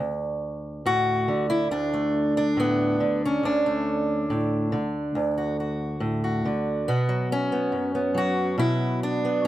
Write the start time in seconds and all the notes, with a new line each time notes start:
Already playing: D2
0.86 A2 F#4
1.28 D3
1.50 E4
1.71 D2 D4
1.94 A3
2.37 D4
2.57 A2 B3
3.00 D3
3.25 C#4
3.43 D2 D4
3.66 A3
4.30 A2
4.72 D3
5.15 D2
5.38 F#4
5.60 F#4
6.00 A2
6.24 F#4
6.45 D3
6.88 B2 B3
7.09 F#3
7.32 C#4
7.52 B3
7.72 F#2
7.95 B3
8.14 F#3 F#4
8.58 B2 E4
9.03 D4
9.25 B3